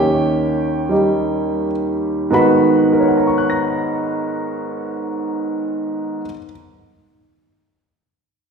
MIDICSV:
0, 0, Header, 1, 2, 480
1, 0, Start_track
1, 0, Key_signature, 5, "minor"
1, 0, Tempo, 606980
1, 1836, Time_signature, 4, 2, 24, 8
1, 6726, End_track
2, 0, Start_track
2, 0, Title_t, "Upright piano"
2, 0, Program_c, 0, 0
2, 0, Note_on_c, 0, 39, 48
2, 0, Note_on_c, 0, 51, 45
2, 0, Note_on_c, 0, 61, 42
2, 0, Note_on_c, 0, 67, 57
2, 0, Note_on_c, 0, 73, 49
2, 0, Note_on_c, 0, 79, 82
2, 706, Note_on_c, 0, 55, 42
2, 716, Note_off_c, 0, 67, 0
2, 720, Note_on_c, 0, 63, 39
2, 727, Note_on_c, 0, 67, 42
2, 1322, Note_off_c, 0, 79, 0
2, 1339, Note_off_c, 0, 73, 0
2, 1815, Note_off_c, 0, 51, 0
2, 1822, Note_on_c, 0, 44, 54
2, 1827, Note_on_c, 0, 51, 54
2, 1828, Note_off_c, 0, 39, 0
2, 1831, Note_off_c, 0, 55, 0
2, 1836, Note_on_c, 0, 59, 54
2, 1838, Note_off_c, 0, 63, 0
2, 1841, Note_off_c, 0, 67, 0
2, 1842, Note_off_c, 0, 61, 0
2, 1844, Note_on_c, 0, 66, 64
2, 1851, Note_on_c, 0, 83, 69
2, 2313, Note_on_c, 0, 70, 39
2, 2371, Note_on_c, 0, 73, 39
2, 2438, Note_on_c, 0, 78, 36
2, 2509, Note_on_c, 0, 82, 38
2, 2586, Note_on_c, 0, 85, 36
2, 2672, Note_on_c, 0, 90, 36
2, 2765, Note_on_c, 0, 94, 30
2, 4909, Note_off_c, 0, 70, 0
2, 4918, Note_off_c, 0, 83, 0
2, 4935, Note_off_c, 0, 44, 0
2, 4937, Note_off_c, 0, 51, 0
2, 4938, Note_off_c, 0, 73, 0
2, 4942, Note_off_c, 0, 59, 0
2, 4946, Note_off_c, 0, 66, 0
2, 4971, Note_off_c, 0, 78, 0
2, 5007, Note_off_c, 0, 82, 0
2, 5045, Note_off_c, 0, 85, 0
2, 5088, Note_off_c, 0, 90, 0
2, 5135, Note_off_c, 0, 94, 0
2, 6726, End_track
0, 0, End_of_file